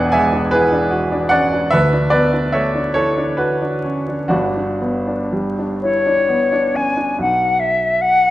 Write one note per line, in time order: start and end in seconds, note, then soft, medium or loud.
0.00 1.68 E1 medium
0.00 1.69 E2 medium
0.00 1.76 B3 medium
0.00 0.33 D4 medium
0.00 0.11 D5 medium
0.00 0.13 E5 medium
0.00 0.14 F#5 loud
0.00 0.12 G#5 loud
0.12 0.46 G#3 medium
0.12 0.50 E5 medium
0.12 0.53 G#5 loud
0.33 0.65 D4 soft
0.51 0.74 E4 medium
0.51 1.29 G#4 medium
0.51 1.32 B4 loud
0.72 1.05 D4 medium
0.91 1.24 F#4 medium
1.12 1.45 D4 medium
1.29 1.53 C#4 soft
1.29 1.70 D5 medium
1.29 1.72 F#5 loud
1.53 1.73 D4 medium
1.70 4.28 D2 medium
1.70 2.10 B4 medium
1.70 2.13 E5 loud
1.93 2.26 D4 soft
2.10 2.47 B3 medium
2.10 2.51 B4 medium
2.10 2.54 D5 loud
2.33 2.67 D4 medium
2.52 2.88 A3 soft
2.52 2.93 C#5 medium
2.52 2.96 E5 medium
2.75 3.09 D4 soft
2.94 3.18 E4 soft
2.94 3.36 A4 medium
2.94 3.39 C#5 loud
3.18 3.53 D4 medium
3.37 4.27 F#4 medium
3.37 4.31 B4 medium
3.62 3.99 D4 soft
3.84 4.08 C#4 soft
4.08 4.27 D4 soft
4.28 7.12 G1 medium
4.28 7.12 G2 medium
4.28 4.56 D4 medium
4.28 6.72 F#4 medium
4.57 4.97 D4 soft
4.81 5.22 B3 soft
5.07 5.48 D4 soft
5.32 5.72 G3 soft
5.59 5.97 D4 soft
5.82 6.06 E4 soft
5.82 6.77 C#5 medium
6.06 6.43 D4 soft
6.29 6.65 B3 soft
6.53 6.88 D4 medium
6.74 6.96 C#4 soft
6.74 7.18 G#5 medium
6.97 7.18 D4 soft
7.19 8.30 B1 medium
7.19 7.61 F#5 medium
7.60 8.03 E5 medium
8.01 8.30 F#5 medium